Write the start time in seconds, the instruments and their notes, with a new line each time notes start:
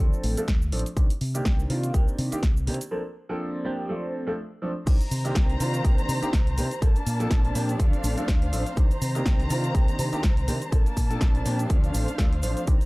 0.00 grand piano F3 A3 C4 D4 A4
0.13 cabasa, shaker
0.24 fingered electric bass A1, open hi-hat
0.37 grand piano F3 A3 C4 D4 A4, closed hi-hat, cabasa, shaker
0.48 fingered electric bass D2, kick, snare, closed hi-hat, cabasa
0.62 cabasa
0.72 fingered electric bass A1, grand piano F3 A3 C4 D4 A4, open hi-hat
0.79 closed hi-hat
0.86 closed hi-hat, cabasa, shaker
0.97 fingered electric bass C2, grand piano D#3 A#3 C4 D4 G4, kick, closed hi-hat, cabasa, shaker
1.10 closed hi-hat, cabasa, shaker
1.21 fingered electric bass C3, open hi-hat
1.34 grand piano D#3 A#3 C4 D4 G4, closed hi-hat, cabasa, shaker
1.45 fingered electric bass C2, kick, snare, cabasa
1.59 cabasa, shaker
1.69 fingered electric bass C3, grand piano D#3 A#3 C4 D4 F4, open hi-hat
1.83 closed hi-hat, cabasa, shaker
1.94 fingered electric bass C2, grand piano D#3 A#3 C4 D4 G4, kick, closed hi-hat, cabasa
2.08 cabasa, shaker
2.19 fingered electric bass C3, open hi-hat
2.32 grand piano D#3 A#3 C4 D4 G4, muted fingered electric bass stroke, closed hi-hat, cabasa, shaker
2.43 fingered electric bass C2, kick, snare, closed hi-hat, cabasa
2.57 cabasa, shaker
2.67 fingered electric bass C3, grand piano D#3 A#3 C4 D4 G4, open hi-hat
2.74 closed hi-hat
2.81 closed hi-hat, cabasa, shaker
2.91 grand piano F3 A#3 C4 D4 A4
3.29 grand piano F3 A#3 C4 D4 A4
3.65 grand piano F3 A#3 C4 D4 G4
3.89 grand piano F3 A3 C4 D4 A4
4.27 grand piano F3 A3 C4 D4 A4
4.62 grand piano F3 A3 C4 D4 A4
4.86 fingered electric bass C2, grand piano D#3 A#3 C4 D4 G4, string section D#3 C5 A#5, kick, closed hi-hat, crash, cabasa, shaker
5.01 closed hi-hat, cabasa, shaker
5.11 fingered electric bass C3, open hi-hat, cabasa, shaker
5.25 grand piano D#3 A#3 C4 D4 G4, closed hi-hat, cabasa, shaker
5.35 fingered electric bass C2, kick, snare, closed hi-hat, cabasa, shaker
5.50 closed hi-hat, shaker
5.60 fingered electric bass C3, grand piano D#3 A#3 C4 D4 F4, open hi-hat, cabasa, shaker
5.73 closed hi-hat, cabasa, shaker
5.84 fingered electric bass C2, grand piano D#3 A#3 C4 D4 G4, kick, closed hi-hat, cabasa, shaker
5.98 closed hi-hat, cabasa, shaker
6.09 fingered electric bass C3, open hi-hat, cabasa, shaker
6.22 grand piano D#3 A#3 C4 D4 G4, muted fingered electric bass stroke, closed hi-hat, cabasa, shaker
6.33 fingered electric bass C2, kick, snare, closed hi-hat, cabasa, shaker
6.47 closed hi-hat, shaker
6.57 fingered electric bass C3, grand piano D#3 A#3 C4 D4 G4, open hi-hat, cabasa, shaker
6.71 closed hi-hat, cabasa, shaker
6.82 fingered electric bass A#1, grand piano F3 A#3 C4 D4 A4, string section A#3 D4 A5, kick, closed hi-hat, cabasa, shaker
6.96 closed hi-hat, cabasa, shaker
7.06 fingered electric bass A#2, open hi-hat, cabasa, shaker
7.19 grand piano F3 A#3 C4 D4 A4, closed hi-hat, cabasa, shaker
7.31 fingered electric bass A#1, kick, snare, closed hi-hat, cabasa, shaker
7.45 closed hi-hat, shaker
7.55 fingered electric bass A#2, grand piano F3 A#3 C4 D4 G4, open hi-hat, cabasa, shaker
7.69 closed hi-hat, cabasa, shaker
7.79 fingered electric bass D2, grand piano F3 A3 C4 D4 A4, string section C5 F5, kick, closed hi-hat, cabasa, shaker
7.93 closed hi-hat, cabasa, shaker
8.04 fingered electric bass A1, open hi-hat, cabasa, shaker
8.17 grand piano F3 A3 C4 D4 A4, muted fingered electric bass stroke, closed hi-hat, cabasa, shaker
8.28 fingered electric bass D2, kick, snare, closed hi-hat, cabasa, shaker
8.42 closed hi-hat, shaker
8.52 fingered electric bass A1, grand piano F3 A3 C4 D4 A4, open hi-hat, cabasa, shaker
8.66 closed hi-hat, cabasa, shaker
8.77 fingered electric bass C2, grand piano D#3 A#3 C4 D4 G4, string section D#3 A#5, kick, closed hi-hat, cabasa, shaker
8.91 closed hi-hat, cabasa, shaker
9.01 fingered electric bass C3, open hi-hat, cabasa, shaker
9.15 grand piano D#3 A#3 C4 D4 G4, closed hi-hat, cabasa, shaker
9.26 fingered electric bass C2, kick, snare, closed hi-hat, cabasa, shaker
9.40 closed hi-hat, shaker
9.50 fingered electric bass C3, grand piano D#3 A#3 C4 D4 F4, open hi-hat, cabasa, shaker
9.64 closed hi-hat, cabasa, shaker
9.75 fingered electric bass C2, grand piano D#3 A#3 C4 D4 G4, kick, closed hi-hat, cabasa, shaker
9.88 closed hi-hat, cabasa, shaker
9.99 fingered electric bass C3, open hi-hat, cabasa, shaker
10.12 grand piano D#3 A#3 C4 D4 G4, muted fingered electric bass stroke, closed hi-hat, cabasa, shaker
10.23 fingered electric bass C2, kick, snare, closed hi-hat, cabasa, shaker
10.37 closed hi-hat, shaker
10.48 fingered electric bass C3, grand piano D#3 A#3 C4 D4 G4, open hi-hat, cabasa, shaker
10.61 closed hi-hat, cabasa, shaker
10.72 fingered electric bass A#1, grand piano F3 A#3 C4 D4 A4, string section A#3 D4 A5, kick, closed hi-hat, cabasa, shaker
10.86 closed hi-hat, cabasa, shaker
10.97 fingered electric bass A#2, kick, open hi-hat, cabasa, shaker
11.10 grand piano F3 A#3 C4 D4 A4, closed hi-hat, cabasa, shaker
11.21 fingered electric bass A#1, kick, snare, closed hi-hat, cabasa, shaker
11.35 closed hi-hat, shaker
11.45 fingered electric bass A#2, grand piano F3 A#3 C4 D4 G4, open hi-hat, cabasa, shaker
11.59 closed hi-hat, cabasa, shaker
11.69 fingered electric bass D2, grand piano F3 A3 C4 D4 A4, string section C5 F5, kick, closed hi-hat, cabasa, shaker
11.84 closed hi-hat, cabasa, shaker
11.94 fingered electric bass A1, open hi-hat, cabasa, shaker
12.08 closed hi-hat, cabasa, shaker
12.18 fingered electric bass D2, grand piano F3 A3 C4 D4 A4, kick, snare, closed hi-hat, cabasa, shaker
12.32 closed hi-hat, shaker
12.43 fingered electric bass A1, grand piano F3 A3 C4 D4 C5, open hi-hat, cabasa, shaker
12.57 closed hi-hat, cabasa, shaker
12.67 fingered electric bass C2, grand piano D#3 A#3 C4 D4 G4, string section D#3 C5 A#5, kick, closed hi-hat, cabasa, shaker
12.81 closed hi-hat, cabasa, shaker